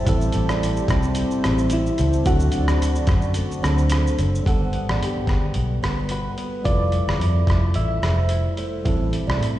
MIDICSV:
0, 0, Header, 1, 8, 480
1, 0, Start_track
1, 0, Key_signature, 1, "major"
1, 0, Tempo, 549451
1, 61, Time_signature, 4, 2, 24, 8
1, 8378, End_track
2, 0, Start_track
2, 0, Title_t, "Kalimba"
2, 0, Program_c, 0, 108
2, 69, Note_on_c, 0, 76, 98
2, 292, Note_off_c, 0, 76, 0
2, 429, Note_on_c, 0, 74, 74
2, 757, Note_off_c, 0, 74, 0
2, 1259, Note_on_c, 0, 72, 88
2, 1383, Note_off_c, 0, 72, 0
2, 1740, Note_on_c, 0, 72, 74
2, 1863, Note_off_c, 0, 72, 0
2, 1978, Note_on_c, 0, 78, 101
2, 2204, Note_off_c, 0, 78, 0
2, 2347, Note_on_c, 0, 74, 69
2, 2673, Note_off_c, 0, 74, 0
2, 3171, Note_on_c, 0, 72, 87
2, 3297, Note_off_c, 0, 72, 0
2, 3670, Note_on_c, 0, 72, 68
2, 3787, Note_off_c, 0, 72, 0
2, 3906, Note_on_c, 0, 78, 84
2, 4128, Note_off_c, 0, 78, 0
2, 4284, Note_on_c, 0, 74, 59
2, 4602, Note_off_c, 0, 74, 0
2, 5090, Note_on_c, 0, 71, 72
2, 5217, Note_off_c, 0, 71, 0
2, 5567, Note_on_c, 0, 71, 67
2, 5696, Note_off_c, 0, 71, 0
2, 5805, Note_on_c, 0, 77, 79
2, 6038, Note_off_c, 0, 77, 0
2, 6187, Note_on_c, 0, 74, 62
2, 6515, Note_off_c, 0, 74, 0
2, 7011, Note_on_c, 0, 72, 73
2, 7139, Note_off_c, 0, 72, 0
2, 7495, Note_on_c, 0, 72, 63
2, 7622, Note_off_c, 0, 72, 0
2, 7733, Note_on_c, 0, 76, 80
2, 7964, Note_off_c, 0, 76, 0
2, 8101, Note_on_c, 0, 74, 65
2, 8378, Note_off_c, 0, 74, 0
2, 8378, End_track
3, 0, Start_track
3, 0, Title_t, "Analog synth pad"
3, 0, Program_c, 1, 89
3, 0, Note_on_c, 1, 76, 66
3, 0, Note_on_c, 1, 81, 78
3, 52, Note_on_c, 1, 72, 70
3, 58, Note_on_c, 1, 67, 78
3, 1940, Note_off_c, 1, 76, 0
3, 1955, Note_off_c, 1, 67, 0
3, 1975, Note_on_c, 1, 74, 65
3, 1979, Note_on_c, 1, 66, 74
3, 3853, Note_off_c, 1, 72, 0
3, 3853, Note_off_c, 1, 81, 0
3, 3874, Note_off_c, 1, 74, 0
3, 3876, Note_off_c, 1, 66, 0
3, 8378, End_track
4, 0, Start_track
4, 0, Title_t, "Synth keys"
4, 0, Program_c, 2, 88
4, 788, Note_on_c, 2, 60, 85
4, 1510, Note_on_c, 2, 64, 90
4, 1523, Note_off_c, 2, 60, 0
4, 1979, Note_on_c, 2, 66, 107
4, 1996, Note_off_c, 2, 64, 0
4, 3380, Note_off_c, 2, 66, 0
4, 4404, Note_on_c, 2, 67, 67
4, 5343, Note_on_c, 2, 71, 76
4, 5378, Note_off_c, 2, 67, 0
4, 5810, Note_on_c, 2, 74, 92
4, 5833, Note_off_c, 2, 71, 0
4, 6739, Note_off_c, 2, 74, 0
4, 6774, Note_on_c, 2, 76, 83
4, 7462, Note_off_c, 2, 76, 0
4, 8378, End_track
5, 0, Start_track
5, 0, Title_t, "Tine electric piano"
5, 0, Program_c, 3, 4
5, 0, Control_c, 3, 64, 127
5, 35, Note_on_c, 3, 55, 83
5, 52, Note_on_c, 3, 60, 78
5, 58, Note_on_c, 3, 64, 77
5, 73, Control_c, 3, 64, 0
5, 77, Note_on_c, 3, 69, 93
5, 251, Control_c, 3, 64, 127
5, 1927, Note_off_c, 3, 55, 0
5, 1936, Note_off_c, 3, 60, 0
5, 1939, Note_off_c, 3, 64, 0
5, 1949, Note_off_c, 3, 69, 0
5, 1960, Note_on_c, 3, 54, 71
5, 1978, Note_on_c, 3, 60, 60
5, 1985, Control_c, 3, 64, 0
5, 1993, Note_on_c, 3, 62, 62
5, 2004, Note_on_c, 3, 69, 79
5, 2113, Control_c, 3, 64, 127
5, 3141, Note_off_c, 3, 54, 0
5, 3151, Note_off_c, 3, 60, 0
5, 3158, Note_off_c, 3, 62, 0
5, 3160, Note_on_c, 3, 54, 58
5, 3164, Note_off_c, 3, 69, 0
5, 3166, Note_on_c, 3, 60, 55
5, 3175, Note_on_c, 3, 62, 56
5, 3178, Note_on_c, 3, 69, 67
5, 3872, Note_on_c, 3, 55, 74
5, 3886, Note_off_c, 3, 54, 0
5, 3888, Note_on_c, 3, 59, 61
5, 3889, Note_off_c, 3, 60, 0
5, 3894, Note_off_c, 3, 62, 0
5, 3895, Note_off_c, 3, 69, 0
5, 3903, Note_on_c, 3, 78, 63
5, 3905, Control_c, 3, 64, 0
5, 3918, Note_on_c, 3, 69, 78
5, 4049, Control_c, 3, 64, 127
5, 5769, Note_off_c, 3, 55, 0
5, 5777, Note_off_c, 3, 59, 0
5, 5785, Note_off_c, 3, 78, 0
5, 5790, Note_on_c, 3, 55, 60
5, 5792, Note_off_c, 3, 69, 0
5, 5803, Note_on_c, 3, 64, 52
5, 5824, Control_c, 3, 64, 0
5, 5824, Note_on_c, 3, 65, 57
5, 5837, Note_on_c, 3, 69, 68
5, 6006, Control_c, 3, 64, 127
5, 7691, Note_off_c, 3, 55, 0
5, 7698, Note_off_c, 3, 64, 0
5, 7708, Note_off_c, 3, 65, 0
5, 7714, Note_off_c, 3, 69, 0
5, 7719, Note_on_c, 3, 55, 69
5, 7733, Note_on_c, 3, 60, 65
5, 7745, Note_on_c, 3, 64, 64
5, 7748, Control_c, 3, 64, 0
5, 7763, Note_on_c, 3, 69, 80
5, 7905, Control_c, 3, 64, 127
5, 8378, Note_off_c, 3, 55, 0
5, 8378, Note_off_c, 3, 60, 0
5, 8378, Note_off_c, 3, 64, 0
5, 8378, Note_off_c, 3, 69, 0
5, 8378, End_track
6, 0, Start_track
6, 0, Title_t, "Clean electric guitar"
6, 0, Program_c, 4, 27
6, 0, Note_on_c, 4, 57, 58
6, 0, Note_on_c, 4, 64, 65
6, 0, Note_on_c, 4, 67, 71
6, 48, Note_on_c, 4, 45, 87
6, 301, Note_off_c, 4, 57, 0
6, 305, Note_on_c, 4, 60, 61
6, 542, Note_off_c, 4, 64, 0
6, 545, Note_on_c, 4, 64, 70
6, 775, Note_off_c, 4, 60, 0
6, 778, Note_on_c, 4, 60, 62
6, 1022, Note_on_c, 4, 55, 67
6, 1260, Note_off_c, 4, 60, 0
6, 1263, Note_on_c, 4, 60, 58
6, 1498, Note_off_c, 4, 55, 0
6, 1510, Note_on_c, 4, 55, 59
6, 1690, Note_off_c, 4, 67, 0
6, 1731, Note_off_c, 4, 60, 0
6, 1734, Note_on_c, 4, 60, 61
6, 1969, Note_off_c, 4, 45, 0
6, 1976, Note_on_c, 4, 50, 91
6, 2031, Note_off_c, 4, 64, 0
6, 2035, Note_off_c, 4, 55, 0
6, 2209, Note_off_c, 4, 60, 0
6, 2213, Note_on_c, 4, 60, 60
6, 2465, Note_on_c, 4, 66, 68
6, 2689, Note_off_c, 4, 60, 0
6, 2699, Note_on_c, 4, 60, 62
6, 2943, Note_on_c, 4, 57, 60
6, 3163, Note_off_c, 4, 60, 0
6, 3173, Note_on_c, 4, 60, 56
6, 3414, Note_off_c, 4, 57, 0
6, 3418, Note_on_c, 4, 57, 58
6, 3646, Note_off_c, 4, 60, 0
6, 3657, Note_on_c, 4, 60, 56
6, 3896, Note_off_c, 4, 57, 0
6, 3899, Note_on_c, 4, 55, 73
6, 3947, Note_off_c, 4, 60, 0
6, 4133, Note_on_c, 4, 59, 56
6, 4607, Note_off_c, 4, 59, 0
6, 4617, Note_on_c, 4, 59, 47
6, 5033, Note_off_c, 4, 50, 0
6, 5087, Note_off_c, 4, 59, 0
6, 5098, Note_on_c, 4, 59, 47
6, 5334, Note_off_c, 4, 66, 0
6, 5338, Note_on_c, 4, 66, 52
6, 5559, Note_off_c, 4, 59, 0
6, 5570, Note_on_c, 4, 59, 48
6, 5811, Note_off_c, 4, 55, 0
6, 5814, Note_on_c, 4, 53, 74
6, 5865, Note_off_c, 4, 59, 0
6, 5869, Note_off_c, 4, 66, 0
6, 6054, Note_on_c, 4, 57, 52
6, 6289, Note_on_c, 4, 64, 51
6, 6540, Note_off_c, 4, 57, 0
6, 6543, Note_on_c, 4, 57, 51
6, 6770, Note_off_c, 4, 64, 0
6, 6774, Note_on_c, 4, 64, 50
6, 7006, Note_off_c, 4, 57, 0
6, 7009, Note_on_c, 4, 57, 50
6, 7250, Note_off_c, 4, 64, 0
6, 7254, Note_on_c, 4, 64, 52
6, 7493, Note_off_c, 4, 57, 0
6, 7496, Note_on_c, 4, 57, 51
6, 7732, Note_on_c, 4, 45, 73
6, 7738, Note_off_c, 4, 53, 0
6, 7975, Note_on_c, 4, 55, 56
6, 8001, Note_off_c, 4, 57, 0
6, 8212, Note_on_c, 4, 60, 56
6, 8378, Note_off_c, 4, 45, 0
6, 8378, Note_off_c, 4, 55, 0
6, 8378, Note_off_c, 4, 60, 0
6, 8378, Note_off_c, 4, 64, 0
6, 8378, End_track
7, 0, Start_track
7, 0, Title_t, "Fingered electric bass"
7, 0, Program_c, 5, 33
7, 55, Note_on_c, 5, 33, 109
7, 249, Note_off_c, 5, 33, 0
7, 304, Note_on_c, 5, 33, 95
7, 685, Note_off_c, 5, 33, 0
7, 774, Note_on_c, 5, 36, 82
7, 1073, Note_off_c, 5, 36, 0
7, 1272, Note_on_c, 5, 33, 91
7, 1649, Note_off_c, 5, 33, 0
7, 1742, Note_on_c, 5, 37, 96
7, 1931, Note_off_c, 5, 37, 0
7, 1972, Note_on_c, 5, 38, 118
7, 2165, Note_off_c, 5, 38, 0
7, 2218, Note_on_c, 5, 38, 87
7, 2600, Note_off_c, 5, 38, 0
7, 2685, Note_on_c, 5, 42, 80
7, 2986, Note_off_c, 5, 42, 0
7, 3179, Note_on_c, 5, 38, 87
7, 3561, Note_off_c, 5, 38, 0
7, 3659, Note_on_c, 5, 30, 87
7, 3848, Note_off_c, 5, 30, 0
7, 3898, Note_on_c, 5, 31, 98
7, 4194, Note_off_c, 5, 31, 0
7, 4267, Note_on_c, 5, 33, 71
7, 4353, Note_off_c, 5, 33, 0
7, 4373, Note_on_c, 5, 43, 85
7, 4565, Note_off_c, 5, 43, 0
7, 4606, Note_on_c, 5, 31, 78
7, 4801, Note_off_c, 5, 31, 0
7, 4856, Note_on_c, 5, 35, 79
7, 5047, Note_off_c, 5, 35, 0
7, 5092, Note_on_c, 5, 31, 71
7, 5477, Note_off_c, 5, 31, 0
7, 5818, Note_on_c, 5, 29, 92
7, 6115, Note_off_c, 5, 29, 0
7, 6182, Note_on_c, 5, 31, 70
7, 6271, Note_off_c, 5, 31, 0
7, 6287, Note_on_c, 5, 41, 93
7, 6483, Note_off_c, 5, 41, 0
7, 6527, Note_on_c, 5, 29, 74
7, 6723, Note_off_c, 5, 29, 0
7, 6777, Note_on_c, 5, 33, 79
7, 6969, Note_off_c, 5, 33, 0
7, 7008, Note_on_c, 5, 29, 76
7, 7396, Note_off_c, 5, 29, 0
7, 7735, Note_on_c, 5, 33, 91
7, 8035, Note_off_c, 5, 33, 0
7, 8107, Note_on_c, 5, 36, 73
7, 8195, Note_off_c, 5, 36, 0
7, 8210, Note_on_c, 5, 45, 90
7, 8378, Note_off_c, 5, 45, 0
7, 8378, End_track
8, 0, Start_track
8, 0, Title_t, "Drums"
8, 57, Note_on_c, 9, 36, 112
8, 59, Note_on_c, 9, 42, 85
8, 59, Note_on_c, 9, 82, 82
8, 145, Note_off_c, 9, 36, 0
8, 146, Note_off_c, 9, 42, 0
8, 146, Note_off_c, 9, 82, 0
8, 184, Note_on_c, 9, 82, 63
8, 271, Note_off_c, 9, 82, 0
8, 283, Note_on_c, 9, 42, 51
8, 283, Note_on_c, 9, 82, 53
8, 371, Note_off_c, 9, 42, 0
8, 371, Note_off_c, 9, 82, 0
8, 429, Note_on_c, 9, 37, 96
8, 431, Note_on_c, 9, 82, 50
8, 517, Note_off_c, 9, 37, 0
8, 518, Note_off_c, 9, 82, 0
8, 552, Note_on_c, 9, 42, 82
8, 552, Note_on_c, 9, 82, 81
8, 640, Note_off_c, 9, 42, 0
8, 640, Note_off_c, 9, 82, 0
8, 669, Note_on_c, 9, 82, 53
8, 756, Note_off_c, 9, 82, 0
8, 772, Note_on_c, 9, 36, 102
8, 775, Note_on_c, 9, 42, 57
8, 775, Note_on_c, 9, 82, 58
8, 790, Note_on_c, 9, 37, 90
8, 859, Note_off_c, 9, 36, 0
8, 862, Note_off_c, 9, 42, 0
8, 862, Note_off_c, 9, 82, 0
8, 878, Note_off_c, 9, 37, 0
8, 895, Note_on_c, 9, 82, 49
8, 983, Note_off_c, 9, 82, 0
8, 1003, Note_on_c, 9, 42, 77
8, 1003, Note_on_c, 9, 82, 78
8, 1090, Note_off_c, 9, 42, 0
8, 1090, Note_off_c, 9, 82, 0
8, 1143, Note_on_c, 9, 82, 47
8, 1230, Note_off_c, 9, 82, 0
8, 1258, Note_on_c, 9, 37, 97
8, 1262, Note_on_c, 9, 42, 57
8, 1262, Note_on_c, 9, 82, 53
8, 1345, Note_off_c, 9, 37, 0
8, 1350, Note_off_c, 9, 42, 0
8, 1350, Note_off_c, 9, 82, 0
8, 1382, Note_on_c, 9, 82, 47
8, 1470, Note_off_c, 9, 82, 0
8, 1483, Note_on_c, 9, 42, 83
8, 1483, Note_on_c, 9, 82, 79
8, 1570, Note_off_c, 9, 42, 0
8, 1570, Note_off_c, 9, 82, 0
8, 1627, Note_on_c, 9, 82, 49
8, 1715, Note_off_c, 9, 82, 0
8, 1730, Note_on_c, 9, 42, 50
8, 1730, Note_on_c, 9, 82, 49
8, 1817, Note_off_c, 9, 42, 0
8, 1817, Note_off_c, 9, 82, 0
8, 1861, Note_on_c, 9, 82, 59
8, 1948, Note_off_c, 9, 82, 0
8, 1971, Note_on_c, 9, 42, 79
8, 1971, Note_on_c, 9, 82, 82
8, 1973, Note_on_c, 9, 36, 106
8, 2059, Note_off_c, 9, 42, 0
8, 2059, Note_off_c, 9, 82, 0
8, 2060, Note_off_c, 9, 36, 0
8, 2093, Note_on_c, 9, 82, 65
8, 2181, Note_off_c, 9, 82, 0
8, 2199, Note_on_c, 9, 42, 54
8, 2199, Note_on_c, 9, 82, 53
8, 2286, Note_off_c, 9, 42, 0
8, 2286, Note_off_c, 9, 82, 0
8, 2341, Note_on_c, 9, 37, 91
8, 2343, Note_on_c, 9, 82, 51
8, 2429, Note_off_c, 9, 37, 0
8, 2430, Note_off_c, 9, 82, 0
8, 2465, Note_on_c, 9, 42, 81
8, 2465, Note_on_c, 9, 82, 83
8, 2552, Note_off_c, 9, 42, 0
8, 2552, Note_off_c, 9, 82, 0
8, 2580, Note_on_c, 9, 82, 52
8, 2668, Note_off_c, 9, 82, 0
8, 2681, Note_on_c, 9, 42, 55
8, 2681, Note_on_c, 9, 82, 54
8, 2686, Note_on_c, 9, 36, 107
8, 2697, Note_on_c, 9, 37, 89
8, 2769, Note_off_c, 9, 42, 0
8, 2769, Note_off_c, 9, 82, 0
8, 2773, Note_off_c, 9, 36, 0
8, 2784, Note_off_c, 9, 37, 0
8, 2809, Note_on_c, 9, 82, 47
8, 2896, Note_off_c, 9, 82, 0
8, 2919, Note_on_c, 9, 42, 74
8, 2919, Note_on_c, 9, 82, 76
8, 3007, Note_off_c, 9, 42, 0
8, 3007, Note_off_c, 9, 82, 0
8, 3070, Note_on_c, 9, 82, 48
8, 3157, Note_off_c, 9, 82, 0
8, 3180, Note_on_c, 9, 37, 92
8, 3185, Note_on_c, 9, 42, 56
8, 3185, Note_on_c, 9, 82, 61
8, 3268, Note_off_c, 9, 37, 0
8, 3272, Note_off_c, 9, 42, 0
8, 3272, Note_off_c, 9, 82, 0
8, 3302, Note_on_c, 9, 82, 44
8, 3389, Note_off_c, 9, 82, 0
8, 3404, Note_on_c, 9, 42, 86
8, 3404, Note_on_c, 9, 82, 82
8, 3425, Note_on_c, 9, 37, 92
8, 3491, Note_off_c, 9, 42, 0
8, 3491, Note_off_c, 9, 82, 0
8, 3513, Note_off_c, 9, 37, 0
8, 3556, Note_on_c, 9, 82, 49
8, 3643, Note_off_c, 9, 82, 0
8, 3657, Note_on_c, 9, 42, 54
8, 3657, Note_on_c, 9, 82, 50
8, 3744, Note_off_c, 9, 42, 0
8, 3744, Note_off_c, 9, 82, 0
8, 3801, Note_on_c, 9, 82, 58
8, 3888, Note_off_c, 9, 82, 0
8, 3898, Note_on_c, 9, 36, 95
8, 3906, Note_on_c, 9, 42, 72
8, 3986, Note_off_c, 9, 36, 0
8, 3993, Note_off_c, 9, 42, 0
8, 4132, Note_on_c, 9, 42, 44
8, 4219, Note_off_c, 9, 42, 0
8, 4275, Note_on_c, 9, 37, 80
8, 4362, Note_off_c, 9, 37, 0
8, 4390, Note_on_c, 9, 42, 70
8, 4477, Note_off_c, 9, 42, 0
8, 4607, Note_on_c, 9, 36, 96
8, 4607, Note_on_c, 9, 42, 45
8, 4623, Note_on_c, 9, 37, 70
8, 4694, Note_off_c, 9, 36, 0
8, 4694, Note_off_c, 9, 42, 0
8, 4710, Note_off_c, 9, 37, 0
8, 4840, Note_on_c, 9, 42, 62
8, 4927, Note_off_c, 9, 42, 0
8, 5100, Note_on_c, 9, 37, 74
8, 5104, Note_on_c, 9, 42, 51
8, 5187, Note_off_c, 9, 37, 0
8, 5192, Note_off_c, 9, 42, 0
8, 5319, Note_on_c, 9, 42, 73
8, 5407, Note_off_c, 9, 42, 0
8, 5571, Note_on_c, 9, 42, 45
8, 5658, Note_off_c, 9, 42, 0
8, 5812, Note_on_c, 9, 36, 99
8, 5814, Note_on_c, 9, 42, 71
8, 5900, Note_off_c, 9, 36, 0
8, 5901, Note_off_c, 9, 42, 0
8, 6047, Note_on_c, 9, 42, 43
8, 6134, Note_off_c, 9, 42, 0
8, 6192, Note_on_c, 9, 37, 81
8, 6279, Note_off_c, 9, 37, 0
8, 6302, Note_on_c, 9, 42, 73
8, 6389, Note_off_c, 9, 42, 0
8, 6528, Note_on_c, 9, 36, 96
8, 6535, Note_on_c, 9, 42, 46
8, 6551, Note_on_c, 9, 37, 76
8, 6615, Note_off_c, 9, 36, 0
8, 6623, Note_off_c, 9, 42, 0
8, 6639, Note_off_c, 9, 37, 0
8, 6763, Note_on_c, 9, 42, 62
8, 6850, Note_off_c, 9, 42, 0
8, 7016, Note_on_c, 9, 37, 81
8, 7021, Note_on_c, 9, 42, 50
8, 7103, Note_off_c, 9, 37, 0
8, 7108, Note_off_c, 9, 42, 0
8, 7241, Note_on_c, 9, 42, 72
8, 7328, Note_off_c, 9, 42, 0
8, 7490, Note_on_c, 9, 42, 42
8, 7577, Note_off_c, 9, 42, 0
8, 7737, Note_on_c, 9, 36, 91
8, 7738, Note_on_c, 9, 42, 71
8, 7824, Note_off_c, 9, 36, 0
8, 7826, Note_off_c, 9, 42, 0
8, 7975, Note_on_c, 9, 42, 49
8, 8063, Note_off_c, 9, 42, 0
8, 8122, Note_on_c, 9, 37, 79
8, 8209, Note_off_c, 9, 37, 0
8, 8235, Note_on_c, 9, 42, 73
8, 8322, Note_off_c, 9, 42, 0
8, 8378, End_track
0, 0, End_of_file